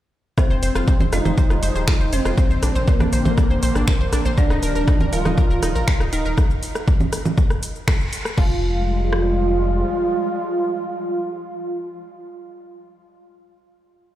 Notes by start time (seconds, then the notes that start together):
0.38 F3 G3 G#3 C4 F4 C5, kick, cross-stick, shaker
0.50 F1 C5, shaker
0.63 F1 C5, open hi-hat, shaker
0.75 F1 F4, cross-stick, shaker
0.88 C5, kick, shaker
1.00 F1 C5, low conga, shaker
1.13 F1 D#4 F4 D#5, cross-stick, open hi-hat, shaker
1.25 F1 C5, low conga, shaker
1.38 C5, kick, shaker
1.50 F1 F4, cross-stick, shaker
1.63 F1 C5, open hi-hat, shaker
1.75 D#1 C5, shaker
1.88 F4, finger snap, kick, cross-stick, shaker
2.00 F1 C5, shaker
2.13 F1 C4 C5, open hi-hat, shaker
2.25 F1 F4, cross-stick, shaker
2.38 D3 A#3 C4 C5, kick, shaker
2.50 A#1 C5, shaker
2.63 A#1 D4, cross-stick, open hi-hat, shaker
2.75 A#1 C5, shaker
2.88 A#3 A#4 C5, kick, shaker
3.00 A#1 D4, cross-stick, low conga, shaker
3.13 A#1 C5, open hi-hat, shaker
3.25 A#1 C5, low conga, shaker
3.38 D4, kick, cross-stick, shaker
3.50 A#1 C5, shaker
3.63 A#1 C5, open hi-hat, shaker
3.75 G#1 D4, cross-stick, shaker
3.88 C5, finger snap, kick, shaker
4.00 A#1 C5, shaker
4.13 A#1 D4, cross-stick, open hi-hat, shaker
4.25 A#1 C5, shaker
4.38 D#3 F3 G3 D4 A#4 D5, kick, shaker
4.50 D#1 D#4, cross-stick, shaker
4.63 D#1 A#4, open hi-hat, shaker
4.75 D#1 A#4, shaker
4.88 D#4, kick, cross-stick, shaker
5.00 D#1 A#4, low conga, shaker
5.13 D#1 F4 A#4 F5, open hi-hat, shaker
5.25 D#1 D#4, cross-stick, low conga, shaker
5.38 A#4, kick, shaker
5.50 D#1 A#4, shaker
5.63 D#1 D#4, cross-stick, open hi-hat, shaker
5.75 A#1 A#4, shaker
5.88 A#4, finger snap, kick, shaker
6.00 D#1 D#4, cross-stick, shaker
6.13 D#1 D#4 A#4 D#5, open hi-hat, shaker
6.25 D#1 A#4, shaker
6.38 kick, cross-stick, shaker
6.50 shaker
6.63 open hi-hat, shaker
6.75 cross-stick, shaker
6.88 kick, shaker
7.00 low conga, shaker
7.13 cross-stick, open hi-hat, shaker
7.25 low conga, shaker
7.38 kick, shaker
7.50 cross-stick, shaker
7.63 open hi-hat, shaker
7.75 shaker
7.88 finger snap, kick, cross-stick, shaker
8.00 shaker
8.13 open hi-hat, shaker
8.25 cross-stick, shaker
8.37 F1 F3 G3 G#3 F4 F5, kick, crash
9.13 cross-stick